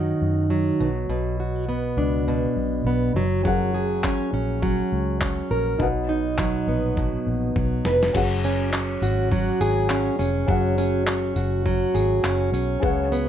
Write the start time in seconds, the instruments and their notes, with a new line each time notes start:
Already playing: fingered electric bass F#2, steel-string acoustic guitar D#3 F#3 D#4 F#4
0.22 fingered electric bass F#2
0.50 steel-string acoustic guitar F#3
0.80 fingered electric bass B1, steel-string acoustic guitar B2
1.09 fingered electric bass B1, steel-string acoustic guitar B2
1.40 steel-string acoustic guitar F#4
1.69 steel-string acoustic guitar B3
1.97 fingered electric bass C#2, steel-string acoustic guitar D4
2.28 steel-string acoustic guitar B2
2.56 fingered electric bass B1
2.85 fingered electric bass B1, steel-string acoustic guitar B3
3.14 fingered electric bass F#1, steel-string acoustic guitar F#3
3.43 steel-string acoustic guitar F#3, felt piano C#4 G#4 A#4, kick
3.47 felt piano F#5
3.74 steel-string acoustic guitar G#4
4.04 steel-string acoustic guitar C#4, kick, clap
4.33 fingered electric bass A#1, steel-string acoustic guitar C#4
4.62 steel-string acoustic guitar F#3, kick
4.92 fingered electric bass C#2
5.21 steel-string acoustic guitar C#4, kick, clap
5.51 fingered electric bass A#1, steel-string acoustic guitar A#4
5.78 fingered electric bass B1, steel-string acoustic guitar B2, felt piano D#4 F#4 B4 F#5, kick
6.09 steel-string acoustic guitar D#4
6.38 steel-string acoustic guitar F#3, kick, clap
6.67 fingered electric bass A#1, steel-string acoustic guitar B3
6.97 steel-string acoustic guitar B2, kick
7.27 fingered electric bass A#1
7.56 fingered electric bass B1, steel-string acoustic guitar F#3, kick
7.85 fingered electric bass F1, steel-string acoustic guitar B4, snare
8.03 snare
8.13 fingered electric bass F#1, steel-string acoustic guitar F#3, felt piano C#4 F#4 G#4, kick, crash
8.17 felt piano F#5
8.44 steel-string acoustic guitar C#4, tambourine
8.73 steel-string acoustic guitar C#4, clap
9.02 fingered electric bass G#1, steel-string acoustic guitar F#4, tambourine
9.32 steel-string acoustic guitar F#3, kick
9.61 fingered electric bass G#1, steel-string acoustic guitar G#4, tambourine
9.90 steel-string acoustic guitar C#4, clap
10.19 fingered electric bass F1, steel-string acoustic guitar C#4, tambourine
10.46 fingered electric bass F#1, steel-string acoustic guitar F#3, felt piano C#4 F#4 G#4, kick
10.50 felt piano F#5
10.78 steel-string acoustic guitar C#4, tambourine
11.07 steel-string acoustic guitar C#4, clap
11.36 fingered electric bass F#1, steel-string acoustic guitar F#4, tambourine
11.66 steel-string acoustic guitar F#3, kick
11.94 fingered electric bass G#1, steel-string acoustic guitar G#4, tambourine
12.24 fingered electric bass F#1, steel-string acoustic guitar C#4, clap
12.52 fingered electric bass B1, steel-string acoustic guitar C#4, tambourine
12.80 fingered electric bass C#2, steel-string acoustic guitar C#3, felt piano C#4 G#4 B4, kick
12.84 felt piano F#5
13.12 steel-string acoustic guitar B3, tambourine